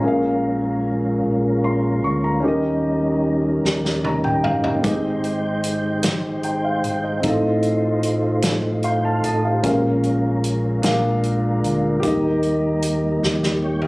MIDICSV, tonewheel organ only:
0, 0, Header, 1, 2, 480
1, 0, Start_track
1, 0, Tempo, 798935
1, 23, Time_signature, 6, 3, 24, 8
1, 8335, End_track
2, 0, Start_track
2, 0, Title_t, "Tonewheel organ"
2, 0, Program_c, 0, 16
2, 18, Note_on_c, 0, 65, 52
2, 19, Note_on_c, 0, 56, 57
2, 19, Note_on_c, 0, 61, 49
2, 20, Note_on_c, 0, 70, 58
2, 1440, Note_off_c, 0, 65, 0
2, 1441, Note_off_c, 0, 56, 0
2, 1441, Note_off_c, 0, 61, 0
2, 1441, Note_off_c, 0, 70, 0
2, 1476, Note_on_c, 0, 61, 49
2, 1477, Note_on_c, 0, 63, 51
2, 1478, Note_on_c, 0, 70, 57
2, 1479, Note_on_c, 0, 55, 52
2, 2890, Note_off_c, 0, 61, 0
2, 2891, Note_off_c, 0, 55, 0
2, 2891, Note_off_c, 0, 63, 0
2, 2891, Note_off_c, 0, 70, 0
2, 2912, Note_on_c, 0, 56, 53
2, 2912, Note_on_c, 0, 63, 48
2, 2912, Note_on_c, 0, 71, 45
2, 2912, Note_on_c, 0, 79, 48
2, 2950, Note_off_c, 0, 71, 0
2, 2952, Note_on_c, 0, 72, 58
2, 4328, Note_off_c, 0, 56, 0
2, 4328, Note_off_c, 0, 63, 0
2, 4328, Note_off_c, 0, 79, 0
2, 4347, Note_off_c, 0, 72, 0
2, 4353, Note_on_c, 0, 55, 42
2, 4354, Note_on_c, 0, 72, 59
2, 4355, Note_on_c, 0, 63, 51
2, 4356, Note_on_c, 0, 65, 47
2, 4391, Note_off_c, 0, 55, 0
2, 4392, Note_on_c, 0, 57, 52
2, 5294, Note_off_c, 0, 72, 0
2, 5318, Note_on_c, 0, 72, 38
2, 5319, Note_on_c, 0, 79, 47
2, 5429, Note_off_c, 0, 72, 0
2, 5429, Note_off_c, 0, 79, 0
2, 5436, Note_on_c, 0, 77, 48
2, 5445, Note_on_c, 0, 72, 43
2, 5547, Note_off_c, 0, 77, 0
2, 5552, Note_off_c, 0, 72, 0
2, 5561, Note_on_c, 0, 75, 54
2, 5568, Note_on_c, 0, 69, 41
2, 5670, Note_off_c, 0, 75, 0
2, 5674, Note_off_c, 0, 69, 0
2, 5680, Note_on_c, 0, 72, 47
2, 5681, Note_on_c, 0, 67, 41
2, 5769, Note_off_c, 0, 63, 0
2, 5769, Note_off_c, 0, 65, 0
2, 5787, Note_off_c, 0, 57, 0
2, 5792, Note_on_c, 0, 70, 58
2, 5793, Note_on_c, 0, 65, 53
2, 5795, Note_on_c, 0, 56, 59
2, 5795, Note_on_c, 0, 61, 52
2, 5903, Note_off_c, 0, 72, 0
2, 5904, Note_off_c, 0, 67, 0
2, 6497, Note_off_c, 0, 70, 0
2, 6499, Note_off_c, 0, 56, 0
2, 6502, Note_off_c, 0, 65, 0
2, 6505, Note_on_c, 0, 70, 65
2, 6506, Note_on_c, 0, 56, 58
2, 6507, Note_on_c, 0, 62, 53
2, 6509, Note_on_c, 0, 65, 55
2, 6512, Note_off_c, 0, 61, 0
2, 7222, Note_off_c, 0, 70, 0
2, 7226, Note_off_c, 0, 56, 0
2, 7227, Note_off_c, 0, 62, 0
2, 7228, Note_off_c, 0, 65, 0
2, 7229, Note_on_c, 0, 70, 62
2, 7231, Note_on_c, 0, 55, 55
2, 7232, Note_on_c, 0, 58, 52
2, 7233, Note_on_c, 0, 63, 49
2, 7932, Note_off_c, 0, 70, 0
2, 8185, Note_on_c, 0, 79, 46
2, 8186, Note_on_c, 0, 73, 40
2, 8299, Note_off_c, 0, 73, 0
2, 8299, Note_off_c, 0, 79, 0
2, 8310, Note_on_c, 0, 75, 47
2, 8311, Note_on_c, 0, 70, 44
2, 8335, Note_off_c, 0, 55, 0
2, 8335, Note_off_c, 0, 58, 0
2, 8335, Note_off_c, 0, 63, 0
2, 8335, Note_off_c, 0, 70, 0
2, 8335, Note_off_c, 0, 75, 0
2, 8335, End_track
0, 0, End_of_file